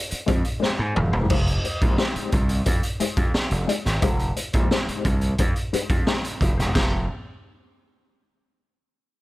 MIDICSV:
0, 0, Header, 1, 6, 480
1, 0, Start_track
1, 0, Tempo, 681044
1, 918, Time_signature, 4, 2, 24, 8
1, 6493, End_track
2, 0, Start_track
2, 0, Title_t, "Clean electric guitar"
2, 0, Program_c, 0, 27
2, 186, Note_on_c, 0, 56, 85
2, 192, Note_on_c, 0, 62, 104
2, 194, Note_on_c, 0, 67, 93
2, 200, Note_on_c, 0, 72, 108
2, 294, Note_off_c, 0, 72, 0
2, 300, Note_off_c, 0, 67, 0
2, 301, Note_off_c, 0, 56, 0
2, 302, Note_off_c, 0, 62, 0
2, 421, Note_on_c, 0, 56, 88
2, 424, Note_on_c, 0, 62, 80
2, 430, Note_on_c, 0, 67, 81
2, 437, Note_on_c, 0, 72, 89
2, 538, Note_off_c, 0, 56, 0
2, 540, Note_off_c, 0, 62, 0
2, 543, Note_off_c, 0, 67, 0
2, 546, Note_off_c, 0, 72, 0
2, 790, Note_on_c, 0, 72, 76
2, 793, Note_on_c, 0, 67, 69
2, 801, Note_on_c, 0, 56, 63
2, 801, Note_on_c, 0, 62, 57
2, 879, Note_off_c, 0, 72, 0
2, 881, Note_off_c, 0, 67, 0
2, 885, Note_off_c, 0, 56, 0
2, 885, Note_off_c, 0, 62, 0
2, 910, Note_on_c, 0, 56, 92
2, 914, Note_on_c, 0, 63, 86
2, 919, Note_on_c, 0, 67, 90
2, 922, Note_on_c, 0, 72, 108
2, 1023, Note_off_c, 0, 56, 0
2, 1025, Note_off_c, 0, 63, 0
2, 1025, Note_off_c, 0, 72, 0
2, 1027, Note_off_c, 0, 67, 0
2, 1273, Note_on_c, 0, 72, 59
2, 1277, Note_on_c, 0, 67, 52
2, 1283, Note_on_c, 0, 63, 46
2, 1286, Note_on_c, 0, 56, 45
2, 1361, Note_off_c, 0, 72, 0
2, 1363, Note_off_c, 0, 67, 0
2, 1366, Note_off_c, 0, 63, 0
2, 1367, Note_off_c, 0, 56, 0
2, 1397, Note_on_c, 0, 56, 82
2, 1399, Note_on_c, 0, 63, 73
2, 1403, Note_on_c, 0, 67, 85
2, 1410, Note_on_c, 0, 72, 74
2, 1618, Note_off_c, 0, 56, 0
2, 1619, Note_off_c, 0, 63, 0
2, 1621, Note_off_c, 0, 67, 0
2, 1625, Note_off_c, 0, 72, 0
2, 2114, Note_on_c, 0, 56, 78
2, 2121, Note_on_c, 0, 63, 94
2, 2125, Note_on_c, 0, 67, 99
2, 2129, Note_on_c, 0, 72, 99
2, 2225, Note_off_c, 0, 56, 0
2, 2226, Note_off_c, 0, 72, 0
2, 2228, Note_off_c, 0, 63, 0
2, 2230, Note_off_c, 0, 67, 0
2, 2589, Note_on_c, 0, 56, 87
2, 2593, Note_on_c, 0, 63, 88
2, 2597, Note_on_c, 0, 67, 82
2, 2600, Note_on_c, 0, 74, 89
2, 2702, Note_off_c, 0, 56, 0
2, 2705, Note_off_c, 0, 63, 0
2, 2707, Note_off_c, 0, 67, 0
2, 2708, Note_off_c, 0, 74, 0
2, 2831, Note_on_c, 0, 56, 100
2, 2837, Note_on_c, 0, 63, 92
2, 2841, Note_on_c, 0, 67, 94
2, 2845, Note_on_c, 0, 72, 105
2, 2944, Note_off_c, 0, 56, 0
2, 2945, Note_off_c, 0, 72, 0
2, 2947, Note_off_c, 0, 63, 0
2, 2949, Note_off_c, 0, 67, 0
2, 3193, Note_on_c, 0, 72, 57
2, 3199, Note_on_c, 0, 67, 54
2, 3201, Note_on_c, 0, 63, 58
2, 3207, Note_on_c, 0, 56, 52
2, 3281, Note_off_c, 0, 72, 0
2, 3284, Note_off_c, 0, 67, 0
2, 3285, Note_off_c, 0, 63, 0
2, 3288, Note_off_c, 0, 56, 0
2, 3312, Note_on_c, 0, 56, 84
2, 3318, Note_on_c, 0, 63, 84
2, 3321, Note_on_c, 0, 67, 78
2, 3325, Note_on_c, 0, 72, 83
2, 3537, Note_off_c, 0, 56, 0
2, 3539, Note_off_c, 0, 63, 0
2, 3541, Note_off_c, 0, 67, 0
2, 3543, Note_off_c, 0, 72, 0
2, 4039, Note_on_c, 0, 56, 72
2, 4039, Note_on_c, 0, 63, 85
2, 4045, Note_on_c, 0, 67, 92
2, 4050, Note_on_c, 0, 72, 80
2, 4154, Note_off_c, 0, 72, 0
2, 4159, Note_off_c, 0, 67, 0
2, 4164, Note_off_c, 0, 63, 0
2, 4180, Note_off_c, 0, 56, 0
2, 4277, Note_on_c, 0, 56, 72
2, 4282, Note_on_c, 0, 63, 75
2, 4284, Note_on_c, 0, 67, 76
2, 4291, Note_on_c, 0, 72, 73
2, 4387, Note_off_c, 0, 56, 0
2, 4389, Note_off_c, 0, 63, 0
2, 4391, Note_off_c, 0, 67, 0
2, 4394, Note_off_c, 0, 72, 0
2, 4632, Note_on_c, 0, 72, 70
2, 4636, Note_on_c, 0, 67, 62
2, 4641, Note_on_c, 0, 63, 69
2, 4644, Note_on_c, 0, 56, 60
2, 4721, Note_off_c, 0, 72, 0
2, 4723, Note_off_c, 0, 67, 0
2, 4726, Note_off_c, 0, 63, 0
2, 4727, Note_off_c, 0, 56, 0
2, 4751, Note_on_c, 0, 56, 78
2, 4752, Note_on_c, 0, 63, 86
2, 4757, Note_on_c, 0, 67, 87
2, 4757, Note_on_c, 0, 72, 90
2, 4899, Note_off_c, 0, 56, 0
2, 4900, Note_off_c, 0, 63, 0
2, 4902, Note_off_c, 0, 67, 0
2, 4903, Note_off_c, 0, 72, 0
2, 6493, End_track
3, 0, Start_track
3, 0, Title_t, "Slap bass"
3, 0, Program_c, 1, 36
3, 197, Note_on_c, 1, 41, 93
3, 296, Note_off_c, 1, 41, 0
3, 559, Note_on_c, 1, 44, 91
3, 658, Note_off_c, 1, 44, 0
3, 681, Note_on_c, 1, 27, 89
3, 778, Note_off_c, 1, 27, 0
3, 805, Note_on_c, 1, 28, 81
3, 901, Note_off_c, 1, 28, 0
3, 920, Note_on_c, 1, 29, 104
3, 1117, Note_off_c, 1, 29, 0
3, 1283, Note_on_c, 1, 34, 84
3, 1380, Note_off_c, 1, 34, 0
3, 1641, Note_on_c, 1, 36, 82
3, 1838, Note_off_c, 1, 36, 0
3, 1879, Note_on_c, 1, 41, 101
3, 1977, Note_off_c, 1, 41, 0
3, 2237, Note_on_c, 1, 41, 102
3, 2337, Note_off_c, 1, 41, 0
3, 2475, Note_on_c, 1, 29, 79
3, 2575, Note_off_c, 1, 29, 0
3, 2719, Note_on_c, 1, 32, 71
3, 2818, Note_off_c, 1, 32, 0
3, 2838, Note_on_c, 1, 29, 103
3, 3036, Note_off_c, 1, 29, 0
3, 3201, Note_on_c, 1, 34, 94
3, 3299, Note_off_c, 1, 34, 0
3, 3559, Note_on_c, 1, 36, 93
3, 3757, Note_off_c, 1, 36, 0
3, 3799, Note_on_c, 1, 41, 101
3, 3898, Note_off_c, 1, 41, 0
3, 4158, Note_on_c, 1, 41, 92
3, 4258, Note_off_c, 1, 41, 0
3, 4520, Note_on_c, 1, 29, 91
3, 4619, Note_off_c, 1, 29, 0
3, 4642, Note_on_c, 1, 28, 77
3, 4740, Note_off_c, 1, 28, 0
3, 4761, Note_on_c, 1, 29, 89
3, 4983, Note_off_c, 1, 29, 0
3, 6493, End_track
4, 0, Start_track
4, 0, Title_t, "Muted clean electric guitar strokes"
4, 67, Note_on_c, 9, 29, 41
4, 138, Note_off_c, 9, 29, 0
4, 302, Note_on_c, 9, 29, 44
4, 373, Note_off_c, 9, 29, 0
4, 665, Note_on_c, 9, 29, 44
4, 736, Note_off_c, 9, 29, 0
4, 1034, Note_on_c, 9, 29, 47
4, 1104, Note_off_c, 9, 29, 0
4, 1155, Note_on_c, 9, 29, 42
4, 1226, Note_off_c, 9, 29, 0
4, 1632, Note_on_c, 9, 29, 48
4, 1702, Note_off_c, 9, 29, 0
4, 1755, Note_on_c, 9, 29, 55
4, 1826, Note_off_c, 9, 29, 0
4, 1869, Note_on_c, 9, 29, 51
4, 1939, Note_off_c, 9, 29, 0
4, 2000, Note_on_c, 9, 29, 56
4, 2071, Note_off_c, 9, 29, 0
4, 2235, Note_on_c, 9, 29, 56
4, 2305, Note_off_c, 9, 29, 0
4, 2472, Note_on_c, 9, 29, 45
4, 2542, Note_off_c, 9, 29, 0
4, 2715, Note_on_c, 9, 29, 44
4, 2786, Note_off_c, 9, 29, 0
4, 2953, Note_on_c, 9, 29, 41
4, 3024, Note_off_c, 9, 29, 0
4, 3075, Note_on_c, 9, 29, 38
4, 3146, Note_off_c, 9, 29, 0
4, 3570, Note_on_c, 9, 29, 44
4, 3641, Note_off_c, 9, 29, 0
4, 3681, Note_on_c, 9, 29, 53
4, 3752, Note_off_c, 9, 29, 0
4, 3797, Note_on_c, 9, 29, 48
4, 3868, Note_off_c, 9, 29, 0
4, 3920, Note_on_c, 9, 29, 47
4, 3991, Note_off_c, 9, 29, 0
4, 4515, Note_on_c, 9, 29, 37
4, 4585, Note_off_c, 9, 29, 0
4, 6493, End_track
5, 0, Start_track
5, 0, Title_t, "Muted slap bass strokes"
5, 87, Note_on_c, 9, 29, 51
5, 157, Note_off_c, 9, 29, 0
5, 1523, Note_on_c, 9, 29, 49
5, 1593, Note_off_c, 9, 29, 0
5, 2119, Note_on_c, 9, 29, 43
5, 2190, Note_off_c, 9, 29, 0
5, 2359, Note_on_c, 9, 29, 48
5, 2430, Note_off_c, 9, 29, 0
5, 3443, Note_on_c, 9, 29, 47
5, 3513, Note_off_c, 9, 29, 0
5, 4045, Note_on_c, 9, 29, 45
5, 4115, Note_off_c, 9, 29, 0
5, 6493, End_track
6, 0, Start_track
6, 0, Title_t, "Drums"
6, 77, Note_on_c, 9, 42, 51
6, 147, Note_off_c, 9, 42, 0
6, 196, Note_on_c, 9, 42, 73
6, 197, Note_on_c, 9, 36, 107
6, 267, Note_off_c, 9, 36, 0
6, 267, Note_off_c, 9, 42, 0
6, 314, Note_on_c, 9, 42, 52
6, 385, Note_off_c, 9, 42, 0
6, 441, Note_on_c, 9, 38, 55
6, 512, Note_off_c, 9, 38, 0
6, 678, Note_on_c, 9, 45, 104
6, 749, Note_off_c, 9, 45, 0
6, 797, Note_on_c, 9, 43, 104
6, 868, Note_off_c, 9, 43, 0
6, 915, Note_on_c, 9, 49, 101
6, 919, Note_on_c, 9, 36, 127
6, 986, Note_off_c, 9, 49, 0
6, 989, Note_off_c, 9, 36, 0
6, 1040, Note_on_c, 9, 42, 50
6, 1110, Note_off_c, 9, 42, 0
6, 1160, Note_on_c, 9, 42, 66
6, 1230, Note_off_c, 9, 42, 0
6, 1279, Note_on_c, 9, 42, 47
6, 1281, Note_on_c, 9, 36, 94
6, 1349, Note_off_c, 9, 42, 0
6, 1352, Note_off_c, 9, 36, 0
6, 1396, Note_on_c, 9, 38, 106
6, 1467, Note_off_c, 9, 38, 0
6, 1520, Note_on_c, 9, 42, 61
6, 1591, Note_off_c, 9, 42, 0
6, 1636, Note_on_c, 9, 42, 64
6, 1640, Note_on_c, 9, 36, 97
6, 1707, Note_off_c, 9, 42, 0
6, 1710, Note_off_c, 9, 36, 0
6, 1755, Note_on_c, 9, 42, 51
6, 1825, Note_off_c, 9, 42, 0
6, 1873, Note_on_c, 9, 42, 80
6, 1878, Note_on_c, 9, 36, 92
6, 1943, Note_off_c, 9, 42, 0
6, 1948, Note_off_c, 9, 36, 0
6, 1994, Note_on_c, 9, 42, 57
6, 2065, Note_off_c, 9, 42, 0
6, 2115, Note_on_c, 9, 42, 77
6, 2185, Note_off_c, 9, 42, 0
6, 2232, Note_on_c, 9, 42, 51
6, 2235, Note_on_c, 9, 36, 100
6, 2303, Note_off_c, 9, 42, 0
6, 2305, Note_off_c, 9, 36, 0
6, 2356, Note_on_c, 9, 38, 111
6, 2427, Note_off_c, 9, 38, 0
6, 2472, Note_on_c, 9, 42, 65
6, 2542, Note_off_c, 9, 42, 0
6, 2600, Note_on_c, 9, 42, 82
6, 2670, Note_off_c, 9, 42, 0
6, 2715, Note_on_c, 9, 38, 36
6, 2720, Note_on_c, 9, 42, 49
6, 2786, Note_off_c, 9, 38, 0
6, 2791, Note_off_c, 9, 42, 0
6, 2833, Note_on_c, 9, 42, 94
6, 2836, Note_on_c, 9, 36, 124
6, 2904, Note_off_c, 9, 42, 0
6, 2907, Note_off_c, 9, 36, 0
6, 2955, Note_on_c, 9, 42, 47
6, 3025, Note_off_c, 9, 42, 0
6, 3076, Note_on_c, 9, 42, 70
6, 3146, Note_off_c, 9, 42, 0
6, 3194, Note_on_c, 9, 42, 51
6, 3199, Note_on_c, 9, 36, 94
6, 3265, Note_off_c, 9, 42, 0
6, 3269, Note_off_c, 9, 36, 0
6, 3320, Note_on_c, 9, 38, 100
6, 3391, Note_off_c, 9, 38, 0
6, 3443, Note_on_c, 9, 42, 55
6, 3514, Note_off_c, 9, 42, 0
6, 3557, Note_on_c, 9, 42, 58
6, 3559, Note_on_c, 9, 36, 84
6, 3627, Note_off_c, 9, 42, 0
6, 3630, Note_off_c, 9, 36, 0
6, 3672, Note_on_c, 9, 42, 49
6, 3743, Note_off_c, 9, 42, 0
6, 3794, Note_on_c, 9, 42, 87
6, 3799, Note_on_c, 9, 36, 92
6, 3864, Note_off_c, 9, 42, 0
6, 3869, Note_off_c, 9, 36, 0
6, 3916, Note_on_c, 9, 42, 50
6, 3987, Note_off_c, 9, 42, 0
6, 4041, Note_on_c, 9, 42, 73
6, 4111, Note_off_c, 9, 42, 0
6, 4155, Note_on_c, 9, 42, 53
6, 4156, Note_on_c, 9, 36, 97
6, 4225, Note_off_c, 9, 42, 0
6, 4227, Note_off_c, 9, 36, 0
6, 4277, Note_on_c, 9, 38, 98
6, 4348, Note_off_c, 9, 38, 0
6, 4401, Note_on_c, 9, 42, 72
6, 4472, Note_off_c, 9, 42, 0
6, 4517, Note_on_c, 9, 36, 94
6, 4522, Note_on_c, 9, 42, 77
6, 4587, Note_off_c, 9, 36, 0
6, 4592, Note_off_c, 9, 42, 0
6, 4644, Note_on_c, 9, 38, 37
6, 4649, Note_on_c, 9, 42, 45
6, 4714, Note_off_c, 9, 38, 0
6, 4719, Note_off_c, 9, 42, 0
6, 4759, Note_on_c, 9, 36, 104
6, 4759, Note_on_c, 9, 57, 79
6, 4760, Note_on_c, 9, 38, 104
6, 4829, Note_off_c, 9, 36, 0
6, 4830, Note_off_c, 9, 57, 0
6, 4831, Note_off_c, 9, 38, 0
6, 6493, End_track
0, 0, End_of_file